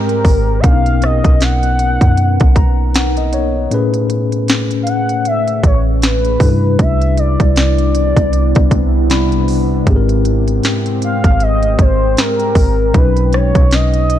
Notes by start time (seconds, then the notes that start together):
Already playing: G#2 G#3 C4 G4 A#4
0.09 closed hi-hat
0.25 G#1, kick, open hi-hat
0.60 B1 B2 B3 D#4 A#4 F#5, kick, closed hi-hat
0.65 C#4 D4 A#4 F5
0.72 D#4
0.86 closed hi-hat
1.02 D#5, cross-stick, closed hi-hat
1.24 B1, kick, closed hi-hat
1.41 F#5, snare, closed hi-hat
1.63 closed hi-hat
1.79 closed hi-hat
2.01 F#2, kick, closed hi-hat
2.17 closed hi-hat
2.40 B1, kick, closed hi-hat
2.56 A#5, kick, closed hi-hat
2.94 F#5, snare, closed hi-hat
3.17 D#5, closed hi-hat
3.33 C#5, closed hi-hat
3.71 A2 A3 C#4 G#4 B4, closed hi-hat
3.94 closed hi-hat
4.10 closed hi-hat
4.32 closed hi-hat
4.48 snare, closed hi-hat
4.71 closed hi-hat
4.83 F5
4.87 F#5, closed hi-hat
5.09 closed hi-hat
5.25 E5, closed hi-hat
5.48 closed hi-hat
5.63 A1 C#5, kick, closed hi-hat
6.02 B4, snare, closed hi-hat
6.25 closed hi-hat
6.40 G2 C3 G3 B3 D4 E4 A4, kick, open hi-hat
6.50 B4
6.79 C2 E5, kick, closed hi-hat
7.01 closed hi-hat
7.17 D5, closed hi-hat
7.40 C2, kick, closed hi-hat
7.56 D5, snare, closed hi-hat
7.78 closed hi-hat
7.95 closed hi-hat
8.16 C2, kick, closed hi-hat
8.33 closed hi-hat
8.55 C2, kick, closed hi-hat
8.71 C2, kick, closed hi-hat
9.10 C3 G3 D4 E4 D5 B5, snare, closed hi-hat
9.32 closed hi-hat
9.48 open hi-hat
9.86 G#1 G#2 G#3 C4 G4 G#4, kick, closed hi-hat
9.96 A#4
10.09 closed hi-hat
10.25 closed hi-hat
10.48 closed hi-hat
10.63 snare, closed hi-hat
10.86 closed hi-hat
11.02 F5, closed hi-hat
11.24 G#1, kick, closed hi-hat
11.40 D#5, closed hi-hat
11.63 closed hi-hat
11.79 G#1 C5, kick, closed hi-hat
12.17 A#4, snare, closed hi-hat
12.40 closed hi-hat
12.55 G#1, kick, open hi-hat
12.93 B1 B2 F#3 B3 C#4 D#4 B4, kick, closed hi-hat
13.17 closed hi-hat
13.33 C#5, cross-stick, closed hi-hat
13.55 B1, kick, closed hi-hat
13.71 D#5, snare, closed hi-hat
13.94 closed hi-hat
14.10 closed hi-hat